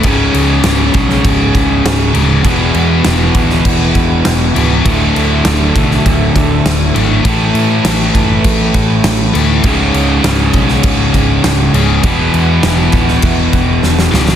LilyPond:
<<
  \new Staff \with { instrumentName = "Analog synth pad" } { \time 4/4 \key cis \phrygian \tempo 4 = 100 <cis' gis' cis''>1 | <e' b' fis''>1 | <d' a' e''>1 | <a e' b'>1 |
<cis' gis' cis''>1 | <e' b' fis''>1 | }
  \new Staff \with { instrumentName = "Overdriven electric guitar" } { \clef bass \time 4/4 \key cis \phrygian <cis, gis, cis>2.~ <cis, gis, cis>8 <cis, gis, cis>8 | <e, b, e>2.~ <e, b, e>8 <e, b, e>8 | <d, a, d>2.~ <d, a, d>8 <d, a, d>8 | <a, e a>2.~ <a, e a>8 <a, e a>8 |
<cis, gis, cis>2.~ <cis, gis, cis>8 <cis, gis, cis>8 | <e, b, e>2.~ <e, b, e>8 <e, b, e>8 | }
  \new Staff \with { instrumentName = "Overdriven electric guitar" } { \clef bass \time 4/4 \key cis \phrygian <cis, gis, cis>1 | <e, b, e>1 | <d, a, d>1 | <a, e a>1 |
<cis, gis, cis>1 | <e, b, e>1 | }
  \new Staff \with { instrumentName = "Picked electric bass" } { \clef bass \time 4/4 \key cis \phrygian cis,,8 cis,8 cis,,8 b,,8 cis,,8 cis,,8 cis,,8 d,,8 | e,,8 e,8 e,,8 d,,8 e,,8 e,,8 e,,8 cis,,8 | d,,8 d,8 d,,8 b,,8 d,,8 d,,8 d,,8 gis,,8 | a,,8 a,8 a,,8 fis,,8 a,,8 a,,8 a,,8 d,8 |
cis,,8 cis,8 cis,,8 b,,8 cis,,8 cis,,8 cis,,8 cis,,8 | e,,8 e,8 e,,8 d,,8 e,,8 e,,8 e,,8 cis,,8 | }
  \new DrumStaff \with { instrumentName = "Drums" } \drummode { \time 4/4 <cymc bd>8 cymc8 <cymc sn>8 <cymc bd>16 sn16 <cymc bd>8 <cymc bd>8 <cymc sn>8 cymc8 | <cymc bd>8 cymc8 <cymc sn>8 <cymc bd>16 sn16 <cymc bd>8 <cymc bd>8 <cymc sn>8 cymc8 | <cymc bd>8 cymc8 <cymc sn>8 <cymc bd>16 sn16 <cymc bd>8 <cymc bd>8 <cymc sn>8 cymc8 | <cymc bd>8 cymc8 <cymc sn>8 <cymc bd>8 <cymc bd>8 <cymc bd>8 <cymc sn>8 cymc8 |
<cymc bd>8 cymc8 <cymc sn>8 <cymc bd>16 sn16 <cymc bd>8 <cymc bd>8 <cymc sn>8 cymc8 | <cymc bd>8 cymc8 <cymc sn>8 <cymc bd>16 sn16 <cymc bd>8 <cymc bd>8 sn16 sn16 sn16 sn16 | }
>>